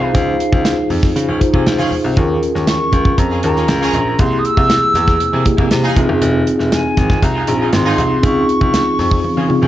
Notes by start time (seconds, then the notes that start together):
Already playing: D#4 F4 G#4 C5 F5
0.13 C#2 D#4 F4 G#4 C5, kick, closed hi-hat, muted conga, low conga
0.39 closed hi-hat, muted conga
0.52 C#2, kick
0.65 snare, closed hi-hat, high conga
0.90 F2, open hi-hat, muted conga, high conga, low conga
1.03 kick, snare
1.16 C#3, closed hi-hat, muted conga
1.28 C#2 C#4 F4 G#4
1.40 D#4 F4 G#4 C5, kick, closed hi-hat, muted conga
1.53 C3 C#4 F4 G#4, kick
1.66 C#2, snare, closed hi-hat, high conga
1.78 C#2 C#4 F4 G#4
1.91 open hi-hat, high conga, low conga
2.04 C2
2.16 D#2 C#4 F4 G#4 A#4, kick, closed hi-hat, muted conga, low conga
2.43 closed hi-hat
2.55 D#2, snare
2.67 C#6, snare, closed hi-hat, high conga
2.92 C#2, kick, closed hi-hat, muted conga, high conga, low conga
3.05 kick
3.18 F2 A#5, kick, closed hi-hat, muted conga
3.31 C#4 F4 G#4
3.43 D#2 C#4 F4 G#4 A#4 A#5, closed hi-hat
3.56 C#4 F4 G#4, snare
3.68 C#2, snare, closed hi-hat, muted conga, high conga
3.81 C#4 F4 G#4
3.93 A#1, closed hi-hat, high conga, low conga
4.18 C2 A#3 E4 G4 G#4 C6, kick, closed hi-hat, muted conga, low conga
4.39 D#6
4.45 E6, closed hi-hat
4.57 C2, kick
4.69 snare, closed hi-hat, muted conga, high conga
4.94 E2, snare, closed hi-hat, muted conga, high conga, low conga
5.08 kick, snare
5.20 C3, closed hi-hat, muted conga
5.33 C3 A#3 E4 G#4
5.45 A#3 E4 G4 G#4, kick, closed hi-hat, muted conga
5.57 C2 A#3 E4 G#4, kick
5.71 C3, snare, closed hi-hat, muted conga, high conga
5.83 D#4 F4 G#4
5.95 F1 C4 D#4 F4 G#4, kick, closed hi-hat, high conga, low conga
6.09 F#1
6.21 F1, closed hi-hat, muted conga, low conga
6.47 closed hi-hat, muted conga
6.59 F1, snare
6.72 G#5, snare, closed hi-hat, muted conga, high conga
6.97 G#1, kick, snare, closed hi-hat, high conga, low conga
7.10 kick, snare
7.22 C2 A#5, kick, closed hi-hat, muted conga
7.35 D#4 F4 G#4
7.47 A#1 C4 D#4 F4 G#4, closed hi-hat, muted conga
7.60 D#4 F4 G#4
7.73 G#1 C6, snare, closed hi-hat, muted conga, high conga
7.85 D#4 F4 G#4
7.98 C2, closed hi-hat, muted conga, high conga, low conga
8.22 C#2 C4 D#4 F4 G#4 C#6, kick, closed hi-hat, low conga
8.49 closed hi-hat
8.61 C#2, kick
8.74 snare, closed hi-hat, muted conga, high conga
8.99 F2, snare, open hi-hat, muted conga, high conga, low conga
9.11 kick
9.24 C#3, high tom
9.37 C#3 C#4 F4 G#4, high tom
9.48 C4 D#4 F4 G#4, mid tom
9.62 C#2 C#4 F4 G#4, mid tom